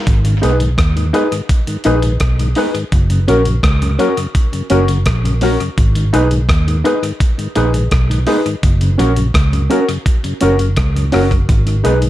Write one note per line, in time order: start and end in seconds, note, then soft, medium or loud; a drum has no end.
0.07 0.40 G#1 loud
0.07 kick loud
0.07 closed hi-hat medium
0.25 0.35 G#2 medium
0.25 0.35 D#3 medium
0.25 closed hi-hat medium
0.42 0.75 B1 medium
0.42 0.52 G#3 medium
0.42 0.52 B3 medium
0.42 0.55 D#4 medium
0.42 0.58 D#4 medium
0.42 0.53 D#4 medium
0.42 0.56 G#4 medium
0.42 0.58 G#4 medium
0.42 0.58 B4 medium
0.42 0.56 B4 medium
0.42 closed hi-hat medium
0.60 0.70 G#2 medium
0.60 0.70 D#3 medium
0.60 closed hi-hat medium
0.78 1.11 D#2 medium
0.78 kick loud
0.78 cross-stick loud
0.78 closed hi-hat medium
0.96 1.06 G#2 medium
0.96 1.06 D#3 soft
0.96 closed hi-hat soft
1.13 1.24 G#3 medium
1.13 1.24 B3 medium
1.13 1.29 D#4 medium
1.13 1.27 D#4 medium
1.13 1.24 D#4 medium
1.13 1.29 G#4 medium
1.13 1.27 G#4 medium
1.13 1.30 B4 loud
1.13 1.28 B4 medium
1.13 closed hi-hat medium
1.31 1.42 G#2 medium
1.31 1.41 D#3 medium
1.31 closed hi-hat medium
1.49 kick loud
1.49 closed hi-hat medium
1.67 1.77 G#2 medium
1.67 1.77 D#3 medium
1.67 closed hi-hat medium
1.84 2.18 A#1 medium
1.84 1.95 G#3 medium
1.84 1.95 B3 medium
1.84 2.00 D#4 medium
1.84 1.98 D#4 medium
1.84 1.96 D#4 medium
1.84 2.01 G#4 medium
1.84 1.99 G#4 medium
1.84 2.01 B4 loud
1.84 1.99 B4 medium
1.84 closed hi-hat medium
2.02 2.13 G#2 medium
2.02 2.13 D#3 medium
2.02 2.10 G#4 soft
2.02 2.10 B4 soft
2.02 closed hi-hat medium
2.20 2.53 B1 medium
2.20 kick loud
2.20 cross-stick loud
2.20 closed hi-hat medium
2.39 2.49 G#2 medium
2.39 2.49 D#3 medium
2.39 closed hi-hat medium
2.55 2.67 G#3 medium
2.55 2.67 B3 medium
2.55 2.70 D#4 medium
2.55 2.72 D#4 medium
2.55 2.67 D#4 medium
2.55 2.72 G#4 medium
2.55 2.70 G#4 medium
2.55 2.73 B4 loud
2.55 2.70 B4 loud
2.55 open hi-hat medium
2.74 2.84 G#2 medium
2.74 2.84 D#3 medium
2.74 closed hi-hat soft
2.92 3.25 F#1 loud
2.92 kick loud
2.92 closed hi-hat medium
3.10 3.20 F#2 soft
3.10 3.20 C#3 medium
3.10 closed hi-hat medium
3.28 3.61 A#1 medium
3.28 3.38 F#3 medium
3.28 3.38 A#3 medium
3.28 3.41 C#4 medium
3.28 3.43 C#4 medium
3.28 3.38 C#4 medium
3.28 3.44 F#4 medium
3.28 3.41 F#4 medium
3.28 3.44 A#4 medium
3.28 3.42 A#4 medium
3.28 closed hi-hat medium
3.45 3.56 F#2 medium
3.45 3.56 C#3 medium
3.45 closed hi-hat medium
3.63 3.96 C#2 loud
3.63 kick loud
3.63 cross-stick loud
3.63 closed hi-hat medium
3.82 3.91 F#2 soft
3.82 3.91 C#3 soft
3.82 closed hi-hat soft
3.98 4.09 F#3 medium
3.98 4.09 A#3 medium
3.98 4.12 C#4 medium
3.98 4.15 C#4 medium
3.98 4.09 C#4 medium
3.98 4.13 F#4 medium
3.98 4.15 F#4 medium
3.98 4.15 A#4 loud
3.98 4.13 A#4 medium
3.98 closed hi-hat medium
4.17 4.27 F#2 medium
4.17 4.27 C#3 medium
4.17 closed hi-hat medium
4.35 kick loud
4.35 closed hi-hat medium
4.53 4.63 F#2 medium
4.53 4.63 C#3 medium
4.53 closed hi-hat soft
4.70 5.04 F#1 medium
4.70 4.80 F#3 medium
4.70 4.81 A#3 medium
4.70 4.84 C#4 medium
4.70 4.86 C#4 medium
4.70 4.81 C#4 medium
4.70 4.86 F#4 medium
4.70 4.84 F#4 medium
4.70 4.87 A#4 medium
4.70 4.84 A#4 medium
4.70 closed hi-hat medium
4.88 4.98 F#2 medium
4.88 4.98 C#3 medium
4.88 4.96 F#4 soft
4.88 4.96 A#4 soft
4.88 closed hi-hat medium
5.06 5.56 A#1 medium
5.06 kick loud
5.06 cross-stick loud
5.06 closed hi-hat medium
5.24 5.34 F#2 medium
5.24 5.34 C#3 medium
5.24 closed hi-hat medium
5.41 5.52 F#3 medium
5.41 5.52 A#3 medium
5.41 5.55 C#4 medium
5.41 5.57 C#4 medium
5.41 5.52 C#4 medium
5.41 5.55 F#4 medium
5.41 5.58 F#4 medium
5.41 5.58 A#4 loud
5.41 5.56 A#4 medium
5.41 open hi-hat medium
5.60 5.70 F#2 medium
5.60 5.70 C#3 medium
5.60 closed hi-hat soft
5.78 6.10 G#1 loud
5.78 kick loud
5.78 closed hi-hat medium
5.95 6.05 G#2 medium
5.95 6.05 D#3 soft
5.95 closed hi-hat medium
6.13 6.46 B1 medium
6.13 6.23 G#3 medium
6.13 6.23 B3 medium
6.13 6.29 D#4 medium
6.13 6.27 D#4 medium
6.13 6.24 D#4 medium
6.13 6.29 G#4 medium
6.13 6.27 G#4 medium
6.13 6.29 B4 medium
6.13 6.27 B4 medium
6.13 closed hi-hat medium
6.31 6.41 G#2 medium
6.31 6.41 D#3 medium
6.31 closed hi-hat medium
6.49 6.81 D#2 medium
6.49 kick loud
6.49 cross-stick loud
6.49 closed hi-hat medium
6.67 6.77 G#2 soft
6.67 6.77 D#3 soft
6.67 closed hi-hat soft
6.84 6.95 G#3 medium
6.84 6.95 B3 medium
6.84 6.98 D#4 medium
6.84 7.00 D#4 medium
6.84 6.95 D#4 medium
6.84 7.00 G#4 medium
6.84 6.98 G#4 medium
6.84 7.01 B4 medium
6.84 6.99 B4 medium
6.84 closed hi-hat medium
7.02 7.12 G#2 medium
7.02 7.12 D#3 medium
7.02 closed hi-hat medium
7.20 kick loud
7.20 closed hi-hat medium
7.38 7.48 G#2 medium
7.38 7.48 D#3 medium
7.38 closed hi-hat soft
7.55 7.89 A#1 medium
7.55 7.66 G#3 medium
7.55 7.66 B3 medium
7.55 7.71 D#4 medium
7.55 7.66 D#4 medium
7.55 7.69 D#4 medium
7.55 7.72 G#4 medium
7.55 7.70 G#4 medium
7.55 7.72 B4 medium
7.55 7.70 B4 medium
7.55 closed hi-hat medium
7.74 7.84 G#2 medium
7.74 7.84 D#3 medium
7.74 7.81 G#4 soft
7.74 7.81 B4 soft
7.74 closed hi-hat medium
7.91 8.24 B1 medium
7.91 kick loud
7.91 cross-stick loud
7.91 closed hi-hat medium
8.10 8.20 G#2 medium
8.10 8.20 D#3 medium
8.10 closed hi-hat medium
8.27 8.38 G#3 medium
8.27 8.38 B3 medium
8.27 8.40 D#4 medium
8.27 8.43 D#4 medium
8.27 8.38 D#4 medium
8.27 8.43 G#4 medium
8.27 8.41 G#4 medium
8.27 8.43 B4 medium
8.27 8.41 B4 medium
8.27 open hi-hat medium
8.46 8.55 G#2 medium
8.46 8.55 D#3 medium
8.46 closed hi-hat soft
8.63 8.96 F#1 loud
8.63 kick loud
8.63 closed hi-hat medium
8.81 8.91 F#2 medium
8.81 8.91 C#3 medium
8.81 closed hi-hat medium
8.98 9.32 A#1 medium
8.98 9.09 F#3 medium
8.98 9.09 A#3 medium
8.98 9.12 C#4 medium
8.98 9.14 C#4 medium
8.98 9.09 C#4 medium
8.98 9.12 F#4 medium
8.98 9.14 F#4 medium
8.98 9.12 A#4 medium
8.98 9.15 A#4 medium
8.98 closed hi-hat medium
9.16 9.27 F#2 medium
9.16 9.27 C#3 medium
9.16 closed hi-hat medium
9.34 9.67 C#2 medium
9.34 kick loud
9.34 cross-stick loud
9.34 closed hi-hat medium
9.53 9.63 F#2 soft
9.53 9.63 C#3 medium
9.53 closed hi-hat soft
9.70 9.80 F#3 medium
9.70 9.80 A#3 medium
9.70 9.83 C#4 medium
9.70 9.86 C#4 medium
9.70 9.80 C#4 medium
9.70 9.86 F#4 medium
9.70 9.84 F#4 medium
9.70 9.86 A#4 medium
9.70 9.84 A#4 medium
9.70 closed hi-hat medium
9.88 9.98 F#2 medium
9.88 9.98 C#3 medium
9.88 closed hi-hat medium
10.06 kick loud
10.06 closed hi-hat medium
10.24 10.34 F#2 medium
10.24 10.34 C#3 medium
10.24 closed hi-hat medium
10.41 10.79 F#1 medium
10.41 10.52 F#3 medium
10.41 10.52 A#3 medium
10.41 10.57 C#4 medium
10.41 10.55 C#4 medium
10.41 10.52 C#4 medium
10.41 10.57 F#4 medium
10.41 10.55 F#4 medium
10.41 10.58 A#4 medium
10.41 10.55 A#4 medium
10.41 closed hi-hat medium
10.59 10.69 F#2 medium
10.59 10.69 C#3 medium
10.59 10.67 F#4 soft
10.59 10.67 A#4 soft
10.59 closed hi-hat medium
10.76 11.10 C#2 medium
10.76 kick loud
10.76 cross-stick loud
10.76 closed hi-hat medium
10.95 11.05 F#2 medium
10.95 11.05 C#3 medium
10.95 closed hi-hat medium
11.12 11.46 F#1 medium
11.12 11.23 F#3 medium
11.12 11.23 A#3 medium
11.12 11.26 C#4 medium
11.12 11.28 C#4 medium
11.12 11.23 C#4 medium
11.12 11.26 F#4 medium
11.12 11.29 F#4 medium
11.12 11.29 A#4 medium
11.12 11.27 A#4 medium
11.12 cross-stick medium
11.12 open hi-hat medium
11.30 11.41 F#2 medium
11.30 11.41 C#3 medium
11.30 kick medium
11.30 closed hi-hat soft
11.49 11.82 G#1 loud
11.49 kick loud
11.49 closed hi-hat medium
11.66 11.76 G#2 medium
11.66 11.76 D#3 medium
11.66 closed hi-hat medium
11.83 12.10 B1 medium
11.83 11.94 G#3 medium
11.83 11.94 B3 medium
11.83 11.97 D#4 medium
11.83 11.94 D#4 medium
11.83 12.00 D#4 medium
11.83 11.98 G#4 medium
11.83 12.00 G#4 medium
11.83 12.00 B4 medium
11.83 11.98 B4 medium
11.83 closed hi-hat medium
12.02 12.10 G#2 medium
12.02 12.10 D#3 medium
12.02 closed hi-hat medium